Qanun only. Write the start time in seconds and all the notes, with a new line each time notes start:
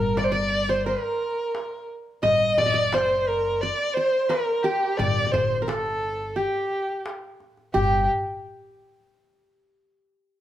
Already playing: A#4
0.17 D5
0.32 D5
0.69 C5
0.86 A#4
2.23 D#5
2.58 D5
2.66 D#5
2.74 D5
2.94 C5
3.63 D5
3.97 C5
4.29 A#4
4.64 G4
4.99 D5
5.26 D5
5.34 C5
5.62 A#4
5.68 A4
6.36 G4
7.74 G4